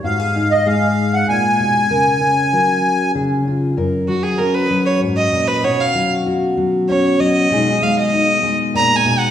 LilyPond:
<<
  \new Staff \with { instrumentName = "Accordion" } { \time 3/4 \key fis \major \tempo 4 = 97 eis''8. dis''16 eis''8. fis''16 gis''4~ | gis''2 r4 | r2. | r2. |
r2. | }
  \new Staff \with { instrumentName = "Fiddle" } { \time 3/4 \key fis \major r2. | r2. | r8 fis'16 gis'16 ais'16 b'8 cis''8 dis''8 b'16 | cis''16 eis''8 r4 r16 cis''8 dis''8~ |
dis''8 eis''16 dis''4 r16 \tuplet 3/2 { ais''8 gis''8 fis''8 } | }
  \new Staff \with { instrumentName = "Steel-string acoustic guitar" } { \clef bass \time 3/4 \key fis \major << { fis'16 gis'16 dis'8 gis'2 | ais'8 cis'8 ais'4 gis'8 eis'8 | ais'4 cis'2 | fis'4 fis'4 cis'4 |
<gis dis' gis'>4 dis'2 | } \\ { gis,4 gis4 ais,8 b,8 | cis4 fis4 cis4 | fis,8 fis4 fis8 gis,8 ais,8 | b,8 fis4 fis4 fis8 |
b,8 gis4 gis8 ais,8 b,8 | } >> }
>>